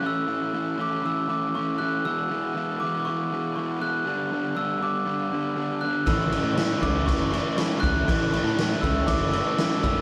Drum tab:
CC |----------------|----------------|----------------|x-x-x-x-x-x-x-x-|
SD |----------------|----------------|----------------|----o-------o---|
BD |----------------|----------------|----------------|o-----o-o-----o-|

CC |x-x-x-x-x-x-x-x-|
SD |---oo-------o---|
BD |o-----o-o-----o-|